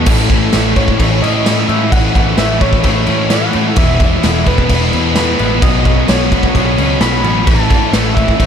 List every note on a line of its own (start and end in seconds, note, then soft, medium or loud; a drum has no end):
0.00 0.78 A4 loud
0.05 0.47 A1 loud
0.05 0.28 A2 medium
0.05 0.29 E3 medium
0.05 0.30 A3 loud
0.05 0.30 C#4 loud
0.05 0.30 E4 loud
0.05 kick loud
0.05 crash loud
0.29 0.52 A2 medium
0.29 0.53 E3 medium
0.29 0.53 A3 medium
0.29 0.54 C#4 loud
0.29 0.54 E4 loud
0.29 kick medium
0.29 crash medium
0.52 0.94 A1 loud
0.52 0.75 A2 medium
0.52 0.75 E3 medium
0.52 0.76 A3 medium
0.52 0.76 C#4 medium
0.52 0.77 E4 medium
0.52 snare loud
0.52 tambourine loud
0.52 crash loud
0.75 0.97 A2 loud
0.75 0.98 E3 loud
0.75 0.98 A3 loud
0.75 0.98 C#4 loud
0.75 0.99 E4 loud
0.75 1.24 C#5 loud
0.75 kick medium
0.75 crash medium
0.88 kick loud
0.98 1.20 A1 loud
0.98 1.20 A2 medium
0.98 1.22 E3 medium
0.98 1.22 A3 medium
0.98 1.22 C#4 medium
0.98 1.24 E4 medium
0.98 kick loud
0.98 crash loud
1.22 1.44 A2 loud
1.22 1.63 A2 loud
1.22 1.45 E3 loud
1.22 1.45 A3 loud
1.22 1.46 C#4 loud
1.22 1.47 E4 loud
1.22 1.70 D#5 loud
1.22 crash medium
1.45 1.67 A2 medium
1.45 1.69 E3 loud
1.45 1.68 A3 loud
1.45 1.68 C#4 loud
1.45 1.70 E4 loud
1.45 snare loud
1.45 tambourine medium
1.45 crash loud
1.68 1.91 A2 medium
1.68 1.89 A2 medium
1.68 1.92 E3 medium
1.68 1.91 A3 medium
1.68 1.92 C#4 medium
1.68 1.93 E4 medium
1.68 1.94 E5 loud
1.68 crash medium
1.92 2.32 A1 loud
1.92 2.13 A2 loud
1.92 2.15 E3 loud
1.92 2.14 A3 medium
1.92 2.15 C#4 loud
1.92 2.16 E4 loud
1.92 2.40 F#5 loud
1.92 kick loud
1.92 crash loud
2.15 2.36 A2 medium
2.15 2.37 E3 medium
2.15 2.37 A3 loud
2.15 2.38 C#4 medium
2.15 2.39 E4 medium
2.15 kick medium
2.15 crash medium
2.37 2.78 A1 loud
2.37 2.59 A2 medium
2.37 2.61 E3 medium
2.37 2.60 A3 medium
2.37 2.61 C#4 loud
2.37 2.62 E4 loud
2.37 2.63 E5 loud
2.37 snare loud
2.37 tambourine medium
2.37 crash medium
2.42 2.65 E3 medium
2.42 2.62 A3 medium
2.60 2.83 A2 medium
2.60 2.83 E3 medium
2.60 2.84 A3 medium
2.60 2.84 C#4 loud
2.60 2.85 E4 loud
2.60 3.32 C#5 loud
2.60 kick loud
2.60 crash medium
2.66 3.11 E3 medium
2.73 kick medium
2.84 3.04 A1 loud
2.84 3.06 A2 medium
2.84 3.06 E3 medium
2.84 3.07 A3 medium
2.84 3.07 C#4 medium
2.84 3.08 E4 loud
2.84 kick loud
2.84 crash medium
3.07 3.29 A2 loud
3.07 3.48 A2 loud
3.07 3.29 E3 loud
3.07 3.30 A3 loud
3.07 3.30 C#4 loud
3.07 3.31 E4 loud
3.07 crash medium
3.12 3.31 E3 medium
3.30 3.52 A2 medium
3.30 3.53 E3 medium
3.30 3.53 A3 medium
3.30 3.53 C#4 loud
3.30 3.54 E4 loud
3.30 3.77 F#5 loud
3.30 snare loud
3.30 tambourine medium
3.30 crash medium
3.53 3.75 A2 medium
3.53 3.75 E3 medium
3.53 3.76 A3 medium
3.53 3.76 C#4 loud
3.53 3.77 E4 loud
3.53 crash medium
3.76 4.17 E1 loud
3.76 4.21 E2 loud
3.76 4.47 E2 loud
3.76 4.00 B2 loud
3.76 4.47 B2 loud
3.76 3.99 E3 loud
3.76 4.00 G#3 loud
3.76 4.02 B3 loud
3.76 4.01 E4 loud
3.76 4.49 E5 loud
3.76 kick loud
3.76 crash loud
4.00 4.23 B2 medium
4.00 4.22 E3 medium
4.00 4.23 G#3 medium
4.00 4.24 B3 medium
4.00 4.24 E4 loud
4.00 kick medium
4.00 crash medium
4.22 4.64 E1 loud
4.22 4.69 E2 medium
4.22 4.48 B2 medium
4.22 4.45 E3 medium
4.22 4.46 G#3 medium
4.22 4.47 B3 loud
4.22 4.47 E4 loud
4.22 snare loud
4.22 tambourine medium
4.22 crash loud
4.46 4.94 B2 medium
4.46 4.68 E3 medium
4.46 4.68 G#3 loud
4.46 4.69 B3 loud
4.46 4.70 E4 loud
4.46 5.16 B4 loud
4.46 kick loud
4.46 crash medium
4.58 kick medium
4.69 4.89 E1 loud
4.69 4.91 E3 medium
4.69 4.92 G#3 medium
4.69 4.92 B3 medium
4.69 4.93 E4 loud
4.69 kick loud
4.69 crash loud
4.93 5.33 E2 loud
4.93 5.16 B2 medium
4.93 5.14 E3 loud
4.93 5.15 G#3 loud
4.93 5.15 B3 loud
4.93 5.16 E4 loud
4.93 crash medium
5.15 5.61 E2 medium
5.15 5.61 B2 medium
5.15 5.37 E3 medium
5.15 5.37 G#3 loud
5.15 5.38 B3 loud
5.15 5.38 E4 loud
5.15 5.64 B4 loud
5.15 snare loud
5.15 tambourine medium
5.15 crash loud
5.38 5.60 A1 medium
5.38 5.60 E3 medium
5.38 5.61 G#3 medium
5.38 5.61 B3 medium
5.38 5.61 E4 medium
5.38 crash medium
5.42 5.62 E3 medium
5.62 6.02 B1 loud
5.62 5.83 B2 medium
5.62 5.84 F#3 loud
5.62 5.85 B3 loud
5.62 5.86 C#4 loud
5.62 6.10 F#4 loud
5.62 6.08 D#5 loud
5.62 kick loud
5.62 crash loud
5.84 6.06 B2 medium
5.84 6.07 F#3 medium
5.84 6.07 B3 medium
5.84 6.09 C#4 medium
5.84 kick medium
5.84 crash medium
6.07 6.49 B1 medium
6.07 6.29 B2 medium
6.07 6.30 F#3 loud
6.07 6.30 B3 medium
6.07 6.31 C#4 medium
6.07 6.30 F#4 medium
6.07 7.03 C#5 loud
6.07 snare loud
6.07 tambourine medium
6.07 crash loud
6.30 6.52 B2 medium
6.30 6.53 F#3 loud
6.30 6.54 B3 loud
6.30 6.55 C#4 loud
6.30 7.02 F#4 medium
6.30 kick medium
6.30 crash medium
6.43 kick medium
6.54 6.75 B1 loud
6.54 6.75 B2 medium
6.54 6.76 F#3 medium
6.54 6.77 B3 medium
6.54 6.78 C#4 medium
6.54 kick loud
6.54 crash medium
6.76 6.99 C#2 medium
6.76 6.99 B2 loud
6.76 7.00 F#3 loud
6.76 7.00 B3 loud
6.76 7.02 C#4 loud
6.76 crash medium
7.00 7.22 B1 medium
7.00 7.22 B2 medium
7.00 7.22 F#3 medium
7.00 7.23 B3 medium
7.00 7.24 C#4 loud
7.00 7.22 F#4 medium
7.00 7.48 B5 loud
7.00 snare loud
7.00 tambourine loud
7.00 crash medium
7.23 7.45 A1 medium
7.23 7.45 B2 medium
7.23 7.46 F#3 medium
7.23 7.46 B3 medium
7.23 7.48 C#4 medium
7.23 7.46 F#4 medium
7.23 crash medium
7.46 7.87 A1 loud
7.46 7.69 A2 loud
7.46 7.69 E3 loud
7.46 7.70 A3 loud
7.46 7.70 C#4 loud
7.46 7.71 E4 loud
7.46 8.16 A5 loud
7.46 kick loud
7.46 crash medium
7.69 7.92 A2 medium
7.69 7.92 E3 medium
7.69 7.93 A3 medium
7.69 7.94 C#4 loud
7.69 7.94 E4 medium
7.69 kick medium
7.69 crash medium
7.92 8.33 A1 loud
7.92 8.46 A2 medium
7.92 8.15 E3 medium
7.92 8.16 A3 loud
7.92 8.16 C#4 medium
7.92 8.17 E4 loud
7.92 snare loud
7.92 tambourine loud
7.92 crash medium
8.15 8.37 A2 medium
8.15 8.38 E3 loud
8.15 8.38 A3 medium
8.15 8.38 C#4 loud
8.15 8.40 E4 loud
8.15 8.46 E5 loud
8.15 kick medium
8.15 crash medium
8.28 kick medium
8.38 8.46 A1 loud
8.38 8.46 A2 medium
8.38 8.46 E3 medium
8.38 8.46 A3 medium
8.38 8.46 C#4 medium
8.38 8.46 E4 loud
8.38 kick loud
8.38 crash medium